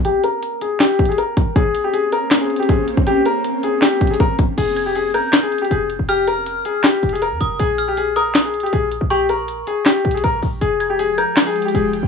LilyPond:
<<
  \new Staff \with { instrumentName = "Synth bell" } { \time 4/4 \key f \minor \tempo 4 = 159 r1 | r1 | r1 | r8 aes'''4 g'''4. r4 |
f'''2 r4. ees'''8 | r8 f'''4 ees'''4. r4 | des'''2 r2 | r8 aes'''4 g'''4. r4 | }
  \new Staff \with { instrumentName = "Grand piano" } { \time 4/4 \key f \minor g'8 bes'4 aes'8 g'8. aes'16 bes'4 | aes'8. g'16 aes'8 bes'8. aes'8 g'16 aes'8 r8 | g'8 bes'4 aes'8 g'8. aes'16 bes'8 r8 | aes'8. g'16 aes'8 bes'8. aes'8 g'16 aes'8 r8 |
g'8 bes'4 aes'8 g'8. aes'16 bes'4 | aes'8. g'16 aes'8 bes'8. aes'8 g'16 aes'8 r8 | g'8 bes'4 aes'8 g'8. aes'16 bes'8 r8 | aes'8. g'16 aes'8 bes'8. aes'8 g'16 aes'8 r8 | }
  \new Staff \with { instrumentName = "Ambient pad" } { \time 4/4 \key f \minor r1 | <bes c' des'>1~ | <bes c' des'>1 | r1 |
r1 | r1 | r1 | <f aes g'>1 | }
  \new Staff \with { instrumentName = "808-style bass" } { \clef bass \time 4/4 \key f \minor r1 | r1 | r1 | f,,4.~ f,,16 r4 r16 f,,8. f,,16~ |
f,,4. r4 f,,8. f,16 f,,8 | bes,,2. bes,,8. bes,,16~ | bes,,4. r4 bes,,8 bes,,8 bes,,8 | f,,4.~ f,,16 r4 r16 f,,8. f,,16 | }
  \new DrumStaff \with { instrumentName = "Drums" } \drummode { \time 4/4 hh8 hh8 hh8 hh8 \tuplet 3/2 { <hc hh sn>16 r16 r16 <hh bd>16 hh16 hh16 } hh8 <hh bd>8 | <hh bd>8 hh8 hh8 hh8 \tuplet 3/2 { <hc hh sn>16 r16 r16 hh16 hh16 hh16 } <hh bd>8 hh16 bd16 | hh8 hh8 hh8 hh8 \tuplet 3/2 { <hc hh sn>16 r16 r16 <hh bd>16 hh16 hh16 } <hh bd>8 <hh bd>8 | <cymc hh>8 hh8 hh8 hh8 \tuplet 3/2 { <hc hh sn>16 r16 r16 hh16 hh16 hh16 } hh8 hh8 |
hh8 hh8 hh8 hh8 \tuplet 3/2 { <hc hh sn>16 r16 r16 hh16 hh16 hh16 } hh8 hh8 | hh8 hh8 hh8 hh8 \tuplet 3/2 { <hc hh sn>16 r16 r16 hh16 hh16 hh16 } hh8 hh8 | hh8 hh8 hh8 hh8 \tuplet 3/2 { <hc hh sn>16 r16 r16 hh16 hh16 hh16 } hh8 hho8 | hh8 hh8 hh8 hh8 \tuplet 3/2 { <hc hh sn>16 r16 r16 hh16 hh16 hh16 } hh8 hh8 | }
>>